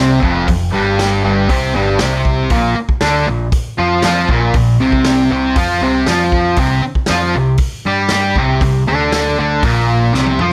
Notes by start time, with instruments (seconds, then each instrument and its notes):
Already playing: distorted electric guitar C3
0.00 picked electric bass C2, distorted electric guitar C4
0.21 picked electric bass F1, distorted electric guitar F2 F3, kick
0.48 picked electric bass F1, distorted electric guitar F2, kick, open hi-hat
0.72 picked electric bass G1, distorted electric guitar G2 G3
0.99 snare, open hi-hat
1.24 picked electric bass G1, distorted electric guitar G2 G3
1.49 picked electric bass C2, distorted electric guitar C3 C4, kick, open hi-hat
1.75 picked electric bass G1, distorted electric guitar G2 G3
1.99 picked electric bass C2, distorted electric guitar C3 C4, snare, open hi-hat
2.25 kick
2.50 picked electric bass A#1, distorted electric guitar A#2 A#3, kick, open hi-hat
2.76 muted distorted electric guitar stroke
2.89 kick
3.01 picked electric bass D2, distorted electric guitar D3 D4, snare, open hi-hat
3.27 picked electric bass A#1, distorted electric guitar A#2
3.52 kick, open hi-hat
3.78 picked electric bass F2, distorted electric guitar F3 F4
4.02 picked electric bass F2, distorted electric guitar F3 F4, snare, open hi-hat
4.29 picked electric bass A#1, distorted electric guitar A#2 A#3, kick
4.54 picked electric bass A#1, distorted electric guitar A#2, kick, open hi-hat
4.80 picked electric bass C2, distorted electric guitar C3 C4
4.92 kick
5.05 snare, open hi-hat
5.31 picked electric bass C2, distorted electric guitar C3 C4
5.56 picked electric bass F2, distorted electric guitar F3 F4, kick, open hi-hat
5.81 picked electric bass C2, distorted electric guitar C3 C4
6.06 picked electric bass F2, distorted electric guitar F3 F4, snare, open hi-hat
6.32 kick
6.56 picked electric bass C2, distorted electric guitar C3 C4, kick, open hi-hat
6.83 muted distorted electric guitar stroke
6.95 kick
7.06 picked electric bass F2, distorted electric guitar F3, snare, open hi-hat
7.11 distorted electric guitar F4
7.35 picked electric bass C2, distorted electric guitar C3
7.58 kick, open hi-hat
7.85 picked electric bass G2, distorted electric guitar G3 G4
8.09 picked electric bass G2, distorted electric guitar G3 G4, snare, open hi-hat
8.36 picked electric bass C2, distorted electric guitar C3 C4, kick
8.61 picked electric bass C2, distorted electric guitar C3, kick, open hi-hat
8.88 picked electric bass D2, distorted electric guitar D3 D4
9.12 snare, open hi-hat
9.39 picked electric bass D2, distorted electric guitar D3 D4
9.63 picked electric bass A#1, distorted electric guitar A#2 A#3, kick, open hi-hat
10.13 picked electric bass C2, distorted electric guitar C3 C4, snare
10.26 high tom
10.39 picked electric bass F2, distorted electric guitar F3 F4, mid tom